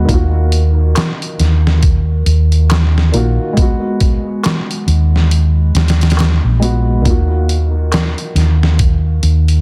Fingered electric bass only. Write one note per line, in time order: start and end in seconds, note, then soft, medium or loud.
0.09 0.92 D#2 loud
1.40 2.23 D#2 medium
2.26 3.10 D#2 loud
3.14 3.36 A#1 medium
4.87 5.71 D#2 loud
5.75 6.39 D#2 loud
6.44 7.06 A#1 medium
7.06 8.13 D#2 medium
8.35 9.19 D#2 loud
9.23 9.61 D#2 loud